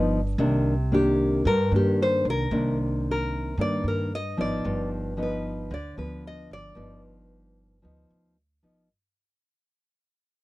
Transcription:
Already playing: G1 G2 F3 B3 D#4
0.38 C2 C3 D#3 A#3 D4
0.92 D#3 A#3 D4 G4
1.45 G2 A#4
1.72 G2 D#3 A#3 D4
1.76 G4
2.02 C5
2.25 C2
2.30 A#4
2.51 C2 C3 D#3 A#3 D4
3.11 A#4
3.58 G2 D#3 A#3 D4 D5
3.84 G2
3.88 A#4
4.15 D#5
4.37 G#1 F3 B3 D#4 D5
4.65 G1 G2
5.17 F3 B3 D#4
5.23 B4
5.71 D2 D3 D5
5.97 D2 F3 B3 B4
6.27 D#5
6.51 G1 D5
6.75 G1 G2 F3 B3 D#4
7.82 D2 F3 B3 D#4
8.11 D2
8.63 G1 F3 B3 D#4

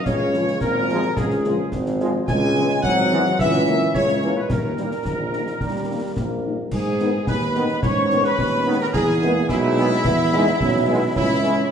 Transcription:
0.06 C#2 C#3 C#5, concert bass drum, snare, crash
0.33 F3 G#3 F4, snare
0.48 snare
0.61 G#1 A#2 A#4, concert bass drum, snare
0.89 F3 G#3 F4, snare
1.03 snare
1.17 C#2 G#2 G#4, concert bass drum, snare
1.31 snare
1.44 F3 G#3 F4, snare
1.72 G#1, concert bass drum, snare
1.86 snare
2.00 F3 G#3 F4, snare
2.28 C#2 G#3 G#5, concert bass drum, snare, crash
2.55 E3 G#3 C#4 E4, snare
2.70 snare
2.83 G#1 F#3 F#5, concert bass drum, snare
3.11 E3 G#3 C#4 E4, snare
3.25 snare
3.39 C#2 E3 E5, concert bass drum, snare
3.53 snare
3.67 E3 A#3 C#4 E4, snare
3.94 C#2 C#3 C#5, concert bass drum, snare
4.08 snare
4.22 E3 A#3 C#4 E4, snare
4.36 B2 B4
4.50 D#2 A#2 A#4, concert bass drum, snare, crash
4.77 D#3 G3 A#3 D#4, snare
4.91 snare
5.05 A#1 D#3, concert bass drum, snare
5.33 G3 A#3 D#4, snare
5.47 snare
5.61 D#2 G3, concert bass drum, snare
5.90 G3 A#3 D#4
6.17 A#1 A#3, concert bass drum, snare
6.45 G3 A#3 D#4
6.72 G#2 G#4 G#5, concert bass drum, crash
6.99 D#3 G#3 B3 D#4, snare
7.27 D#2 B3 B4 B5, concert bass drum, snare
7.55 D#3 G#3 B3 D#4, snare
7.69 snare
7.82 G#2 C#4 C#5 C#6, concert bass drum, snare
8.10 D#3 G#3 B3 D#4, snare
8.24 B4 B5, snare
8.38 D#2, concert bass drum, snare
8.66 D#3 G#3 B3 D#4
8.80 A#4 A#5
8.94 E2 B3 G#4 G#5, concert bass drum, crash
9.22 G#3 A#3 B3 E4, snare
9.49 B1 G#3 E4 E5, concert bass drum, snare
9.77 G#3 B3 E4, snare
9.91 snare
10.05 E2 B3, concert bass drum, snare
10.32 G#3 B3 D#4 E4, snare
10.47 snare
10.60 B1 C#4, concert bass drum, snare
10.88 G#3 B3 E4
11.15 C#2 C#4 E4 E5, concert bass drum, crash
11.44 G#3 C#4 E4, snare

